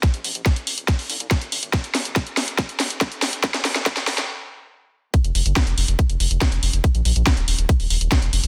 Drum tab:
HH |xxoxxxoxxooxxxox|xxoxxxoxxxoxxxox|xxoxxxox--------|xxoxxxoxxxoxxxox|
SD |o---o---o---o---|o-o-o-o-o-o-o-o-|oooooooo--------|----o-------o---|
BD |o---o---o---o---|o---o---o---o---|o---o-----------|o---o---o---o---|

HH |xxoxxxoxxooxxxox|
SD |----o-------o---|
BD |o---o---o---o---|